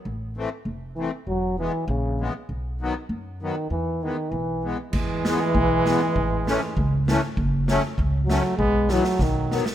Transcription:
<<
  \new Staff \with { instrumentName = "Trumpet" } { \time 2/4 \key e \major \tempo 4 = 98 r2 | r2 | r2 | r2 |
gis2~ | gis4. r8 | r4. a8 | b8 a8 fis8. r16 | }
  \new Staff \with { instrumentName = "Accordion" } { \clef bass \time 2/4 \key e \major r8 <e a c'>8 r8 <e a c'>8 | r8 <e gis b>8 r8 <e gis b>8 | r8 <dis fis b>8 r8 <dis fis b>8 | r8 <e gis b>8 r8 <e gis b>8 |
r8 <e gis b>8 r8 <e gis b>8 | r8 <e a cis'>8 r8 <e a cis'>8 | r8 <fis a cis'>8 r8 <fis a cis'>8 | r8 <e fis b>8 r8 <dis fis b>8 | }
  \new Staff \with { instrumentName = "Euphonium" } { \clef bass \time 2/4 \key e \major r4. e8 | fis8 e8 cis8. r16 | r4. dis8 | e8 dis8 e8. r16 |
e2~ | e4. r8 | r4. fis8 | gis8 fis8 dis8. r16 | }
  \new Staff \with { instrumentName = "Upright bass" } { \clef bass \time 2/4 \key e \major a,,4 f,,4 | e,,4 ais,,4 | b,,4 fis,4 | e,4 b,,4 |
e,4 b,,4 | a,,4 cis,4 | fis,,4 cis,4 | b,,4 b,,4 | }
  \new DrumStaff \with { instrumentName = "Drums" } \drummode { \time 2/4 r4 r4 | r4 r4 | r4 r4 | r4 r4 |
<cymc bd>8 sn8 bd8 sn8 | bd8 sn8 bd8 sn8 | bd8 sn8 bd8 sn8 | bd8 sn16 sn16 <bd sn>8 sn16 sn16 | }
>>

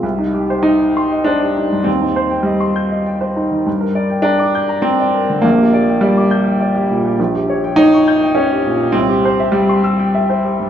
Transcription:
\new Staff \with { instrumentName = "Grand piano" } { \time 3/4 \key c \minor \tempo 4 = 101 << { c,16 ees'16 g'16 c''16 ees''16 g''16 c'''16 ees''16 c''16 g'16 ees'16 g,16 | ees,16 ees'16 c''16 g''16 ees''16 c'''16 g'''16 ees''16 g''16 c''16 ees'16 ees16 | g,16 bes'16 d''16 g''16 bes''16 d'''16 g'''16 bes''16 g''16 d''16 bes'16 d16 | bes,,16 g'16 d''16 g''16 d''16 d'''16 g'''16 g''16 d''16 g'16 bes,16 g'16 |
\key c \phrygian bes,,16 g'16 des''16 g''16 des''16 des'''16 g'''16 g''16 des''16 g'16 bes,16 g'16 | c,16 g'16 c''16 e''16 g''16 c'''16 e'''16 g''16 e''16 c''16 g'16 g,16 | } \\ { r4 ees'4 d'4 | c'4 g4. r8 | r4 d'4 c'4 | bes4 g4. r8 |
r4 ees'4 des'4 | c'4 g4. r8 | } >> }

